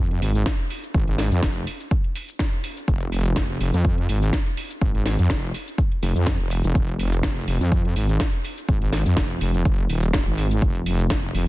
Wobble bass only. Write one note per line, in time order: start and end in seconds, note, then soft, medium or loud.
0.00 0.20 F2 loud
0.22 0.44 G#1 loud
0.94 1.30 G#1 loud
1.32 1.41 F2 loud
1.43 1.65 F1 loud
2.88 3.35 F1 loud
3.36 3.59 F1 loud
3.61 3.72 F1 medium
3.74 4.07 F2 loud
4.09 4.31 G#1 loud
4.81 5.17 G#1 loud
5.19 5.28 F2 loud
5.30 5.52 F1 loud
6.02 6.13 F1 loud
6.16 6.38 F2 loud
6.40 6.62 F1 loud
6.64 6.73 F1 loud
6.75 7.22 F1 loud
7.23 7.46 F1 loud
7.48 7.59 F1 medium
7.61 7.94 F2 loud
7.96 8.18 G#1 loud
8.69 9.04 G#1 loud
9.06 9.15 F2 loud
9.17 9.39 F1 loud
9.41 9.64 F1 loud
9.65 9.88 F#1 loud
9.90 10.25 D#1 loud
10.27 10.60 G#1 loud
10.62 11.09 F1 loud
11.11 11.33 F1 loud
11.35 11.46 F1 medium